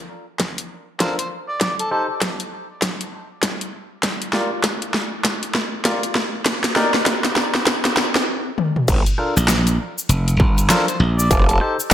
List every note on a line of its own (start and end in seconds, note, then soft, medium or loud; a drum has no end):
0.40 kick medium
0.40 snare medium
0.40 closed hi-hat medium
0.58 closed hi-hat medium
1.00 1.15 D4 medium
1.00 1.16 F4 medium
1.00 1.15 A4 medium
1.00 1.16 A#4 medium
1.00 1.12 C5 medium
1.00 kick medium
1.00 snare medium
1.00 closed hi-hat medium
1.19 1.26 C5 medium
1.19 closed hi-hat medium
1.49 1.57 D5 medium
1.61 1.73 D5 medium
1.61 kick medium
1.61 snare medium
1.61 closed hi-hat medium
1.79 1.87 A4 medium
1.79 closed hi-hat medium
1.91 2.06 D#4 medium
1.91 2.06 G4 medium
1.91 2.06 A4 medium
1.91 2.03 A4 medium
1.91 2.06 C5 loud
2.21 kick loud
2.21 snare medium
2.21 closed hi-hat medium
2.40 closed hi-hat medium
2.82 kick medium
2.82 snare medium
2.82 closed hi-hat medium
3.01 closed hi-hat medium
3.43 kick medium
3.43 snare medium
3.43 closed hi-hat medium
3.61 closed hi-hat medium
4.03 kick loud
4.03 snare medium
4.03 closed hi-hat medium
4.22 closed hi-hat medium
4.33 4.49 F4 medium
4.33 4.49 G4 medium
4.33 4.49 A#4 medium
4.33 4.49 D5 medium
4.33 snare medium
4.64 kick loud
4.64 snare medium
4.64 closed hi-hat medium
4.82 closed hi-hat medium
4.94 snare medium
5.25 kick loud
5.25 snare medium
5.25 closed hi-hat medium
5.43 closed hi-hat medium
5.55 snare medium
5.85 6.00 F4 medium
5.85 6.00 G4 medium
5.85 6.00 A#4 medium
5.85 6.00 D5 loud
5.85 kick loud
5.85 snare medium
5.85 closed hi-hat medium
6.03 closed hi-hat medium
6.15 snare medium
6.46 kick loud
6.46 snare medium
6.46 closed hi-hat medium
6.64 snare medium
6.64 closed hi-hat medium
6.76 6.91 D#4 medium
6.76 6.91 G4 medium
6.76 6.91 A#4 medium
6.76 6.91 D5 loud
6.76 snare medium
6.94 snare medium
7.06 kick loud
7.06 snare loud
7.06 closed hi-hat medium
7.25 snare medium
7.25 closed hi-hat medium
7.36 snare loud
7.55 snare medium
7.67 kick loud
7.67 snare loud
7.67 closed hi-hat medium
7.85 snare medium
7.85 closed hi-hat medium
7.97 snare loud
8.16 snare loud
8.58 high tom medium
8.76 mid tom medium
8.88 9.04 G1 loud
8.88 kick loud
8.88 closed hi-hat medium
8.88 crash loud
8.88 cabasa medium
9.06 closed hi-hat medium
9.06 cabasa soft
9.18 9.34 D4 medium
9.18 9.34 F4 medium
9.18 9.34 A4 medium
9.18 9.34 A#4 medium
9.18 cross-stick medium
9.37 9.77 A#1 loud
9.37 cross-stick soft
9.37 cabasa medium
9.48 snare loud
9.48 closed hi-hat medium
9.48 cabasa medium
9.67 closed hi-hat medium
9.67 cabasa soft
9.98 cabasa medium
10.09 10.38 F1 loud
10.09 closed hi-hat medium
10.09 cabasa medium
10.28 closed hi-hat medium
10.28 cabasa soft
10.40 10.68 G1 loud
10.40 kick loud
10.58 closed hi-hat soft
10.58 cabasa medium
10.70 10.85 D4 medium
10.70 10.85 F4 medium
10.70 10.85 A4 medium
10.70 10.85 A#4 loud
10.70 10.82 C5 medium
10.70 snare loud
10.70 closed hi-hat medium
10.70 cabasa medium
10.88 10.96 C5 medium
10.88 closed hi-hat medium
10.88 cabasa soft
11.00 11.29 A#1 loud
11.18 11.26 D5 medium
11.18 cabasa medium
11.31 11.59 F1 loud
11.31 11.42 D5 medium
11.31 kick loud
11.31 closed hi-hat medium
11.31 cabasa medium
11.49 11.57 A4 medium
11.49 closed hi-hat medium
11.49 cabasa soft
11.61 11.76 D#4 medium
11.61 11.76 G4 medium
11.61 11.73 A4 medium
11.61 11.76 A4 medium
11.61 11.76 C5 loud
11.61 cross-stick medium
11.80 cabasa medium